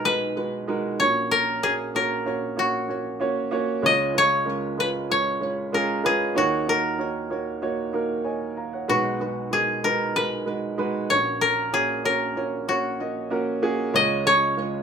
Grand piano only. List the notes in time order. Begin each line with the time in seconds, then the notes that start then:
Already playing: B1 B2 G#3 D#4 F#4 B4
0.05 G#3 D#4 F#4 B4
0.36 G#3 D#4 F#4 B4
0.68 G#3 D#4 F#4 A#4
0.99 A#1 A#2 A#3 C#4 F#4 C#5
1.62 A#3 C#4 F#4 G#4
1.94 A#3 C#4 F#4 C#5
2.25 A#3 C#4 F#4 C#5
2.56 A#3 C#4 F#4 C#5
2.88 A#3 C#4 F#4 C#5
3.20 A#3 C#4 F#4 C#5
3.51 A#3 C#4 F#4 C#5
3.82 C#2 C#3 G#3 C#4 F4 C#5
4.14 G#3 C#4 F4 C#5
4.45 G#3 C#4 F4 A#4
4.77 G#3 C#4 F4 B4
5.10 G#3 C#4 F4 C#5
5.40 G#3 C#4 F4 C#5
5.72 G#3 C#4 F4 G#4
6.03 G#3 C#4 F4 B4
6.35 D#2 D#3 A#3 D#4 F#4 C#5
6.67 A#3 D#4 F#4 C#5
6.98 A#3 D#4 F#4 C#5
7.30 A#3 D#4 F#4 C#5
7.62 A#3 D#4 F#4 C#5
7.93 A#3 D#4 F#4 A#4
8.24 C#5 D#5 G#5
8.57 F5 A#5
8.73 C#5 F#5
8.88 B1 B2 G#3 D#4 F#4 B4
9.20 G#3 D#4 F#4 B4
9.51 G#3 D#4 F#4 A#4
9.84 G#3 D#4 F#4 B4
10.16 G#3 D#4 F#4 A#4
10.45 G#3 D#4 F#4 B4
10.78 G#3 D#4 F#4 B4
11.09 A#1 A#2 A#3 C#4 F#4 C#5
11.72 A#3 C#4 F#4 C#5
12.04 A#3 C#4 F#4 C#5
12.36 A#3 C#4 F#4 C#5
12.68 A#3 C#4 F#4 C#5
13.00 A#3 C#4 F#4 D#5
13.30 A#3 C#4 F#4 A#4
13.62 A#3 C#4 F#4 G#4
13.94 C#2 C#3 G#3 C#4 F4 C#5
14.25 G#3 C#4 F4 G#4
14.57 G#3 C#4 F4 C#5